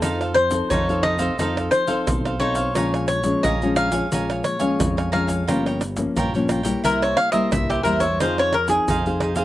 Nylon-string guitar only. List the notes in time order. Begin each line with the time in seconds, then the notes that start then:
0.02 F3 C4 D#4 A4
0.51 C4 D#4 A4
0.71 C3
0.89 C4 D#4 A4
1.19 C4 D#4 A4
1.39 F3 C4 D#4 A4
1.87 C4 D#4 A4
2.40 C4 D#4 A4
2.75 A#2 F3 G#3 C#4
3.24 F3 G#3 C#4
3.44 F2
3.62 F3 G#3 C#4
3.92 F3 G#3 C#4
4.12 A#2 F3 G#3 C#4
4.60 F3 G#3 C#4
4.80 F2
5.13 F3 G#3 C#4
5.49 G2 F3 A#3 C#4
5.97 F3 A#3 C#4
6.17 G2
6.35 F3 A#3 C#4
6.64 G3 A#3 E4
6.85 C3
7.33 G3 A#3 E4
7.53 G2
7.84 G3 A#3 E4
8.21 F3 C4 D#4 G#4
8.68 C4 D#4 G#4
8.88 C3
9.06 C4 D#4 G#4
9.36 C4 D#4 G#4